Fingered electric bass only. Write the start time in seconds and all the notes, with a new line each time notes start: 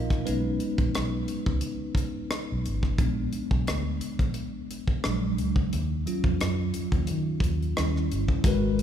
Already playing: A#1
0.29 B1
0.79 A#1
0.98 B1
1.47 C#2
2.52 B1
2.68 G#1
3.00 A#1
3.53 B1
3.70 D2
4.21 A#1
5.06 A#1
5.40 C#2
5.74 D#2
6.25 F2
6.42 F#2
6.93 D#2
7.11 D#3
7.41 D#2
7.79 D#2
8.12 G1
8.45 G#1